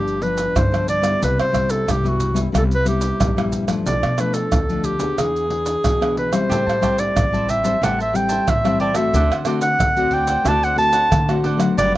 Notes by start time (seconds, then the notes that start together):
Already playing: G1 G2 F3 B3 D4 G4
0.08 pandeiro, maracas
0.21 F3 B3 D4 B4, pandeiro
0.37 pandeiro, maracas
0.55 G2 D3 C5, pandeiro, tamborim, maracas, surdo
0.72 F3 B3 D4, pandeiro, tamborim, maracas
0.88 D5, pandeiro, maracas
1.02 G3 B3 E4, pandeiro, tamborim, maracas
1.20 C2 C3 B4, pandeiro, maracas, surdo
1.40 C3 C5, pandeiro, tamborim, maracas
1.52 G3 B3 E4, pandeiro, tamborim, maracas, surdo
1.70 A4, pandeiro, maracas
1.86 C2 G2, pandeiro, tamborim, maracas, surdo
1.90 G4
2.04 G3 B3 E4, pandeiro, maracas
2.08 F#4
2.20 pandeiro, maracas
2.34 G3 B3 E4, pandeiro, maracas
2.52 C2 C3 G3 B3 E4, pandeiro, tamborim, maracas, surdo
2.57 A4
2.71 B4, pandeiro, maracas
2.85 G3 B3 E4 G4, pandeiro, maracas
3.01 pandeiro, maracas
3.20 A#1 G2, pandeiro, tamborim, maracas, surdo
3.37 G3 B3 E4, pandeiro, tamborim, maracas
3.52 pandeiro, maracas
3.68 F3 A3 D4, pandeiro, tamborim, maracas
3.86 B1 B2 D5, pandeiro, maracas, surdo
4.03 B2, pandeiro, tamborim, maracas
4.18 F3 A3 D4 B4, pandeiro, tamborim, maracas
4.34 A4, pandeiro, maracas
4.52 D2 B2, pandeiro, tamborim, maracas, surdo
4.69 F3 A3 D4, pandeiro, maracas
4.84 G4, pandeiro, maracas
4.99 B3 D4 G#4, pandeiro, maracas
5.17 E2 E3 G#4, pandeiro, tamborim, maracas, surdo
5.36 pandeiro, maracas
5.50 B3 D4 G#4, pandeiro
5.66 pandeiro, maracas
5.84 B2 E3, pandeiro, tamborim, maracas, surdo
6.01 B3 D4 G#4, pandeiro, tamborim, maracas
6.17 B4, pandeiro
6.32 G3 C4 E4 C5, pandeiro, tamborim, maracas
6.49 A1 A2 G4 C5 E5 A5, pandeiro, maracas, surdo
6.66 A2 C5 E5 A5, pandeiro, tamborim, maracas
6.81 G3 C4 E4 G4 C5 E5 A5, pandeiro, tamborim, maracas, surdo
6.98 D5, muted cavaquinho stroke, pandeiro, maracas
7.15 A1 E3, pandeiro, tamborim, maracas, surdo
7.32 G3 C4 E4 C5 E5 A5, pandeiro, maracas
7.48 G4 C5 E5 A5, pandeiro, maracas
7.63 G3 C4 E4 C5 E5 A5, pandeiro, maracas
7.81 A1 A2 G3 C4 E4 G4 C5 E5 F#5 A5, pandeiro, tamborim, maracas, surdo
7.99 C5 E5 A5, pandeiro, maracas
8.13 G3 C4 E4 G5, muted cavaquinho stroke, pandeiro, maracas
8.29 C5 E5 A5, pandeiro, maracas
8.48 A2 E3 E5, pandeiro, tamborim, maracas, surdo
8.64 G3 C4 E4 C5 E5 A5, pandeiro, tamborim, maracas
8.80 G4 C5 D5 E5 A5, pandeiro
8.95 A3 C4 F#4 C5 E5 A5, pandeiro, tamborim, maracas
9.13 D2 D3 D4 C5 D5 F#5, pandeiro, maracas, surdo
9.30 D3 C5 D5 F#5, pandeiro, tamborim, maracas
9.45 A3 C4 D4 F#4 C5 D5 F#5, pandeiro, tamborim, maracas
9.61 F#5, muted cavaquinho stroke, pandeiro, maracas
9.79 D2 A2, pandeiro, tamborim, maracas, surdo
9.96 A3 C4 F#4 C5 D5 F#5, pandeiro, maracas
10.11 D4 C5 D5 F#5 G5, pandeiro
10.27 C5 D5 F#5, pandeiro, maracas
10.44 D2 D3 A3 C4 D4 F#4 C5, pandeiro, tamborim, maracas, surdo
10.48 D5 F#5 A5
10.63 C5 D5 F#5, pandeiro, maracas
10.76 A3 C4 F#4 A5, muted cavaquinho stroke, pandeiro
10.93 C5 D5 F#5, pandeiro, maracas
11.10 A2 D3, pandeiro, tamborim, maracas, surdo
11.28 A3 C4 F#4 C5 D5 F#5, pandeiro, tamborim, maracas
11.44 D4 C5 D5 F#5, pandeiro
11.57 F#3 B3 D4 D5 F#5, pandeiro, tamborim, maracas
11.61 C5
11.77 G1 G2 D4 G4 B4 D5 F#5, pandeiro, maracas, surdo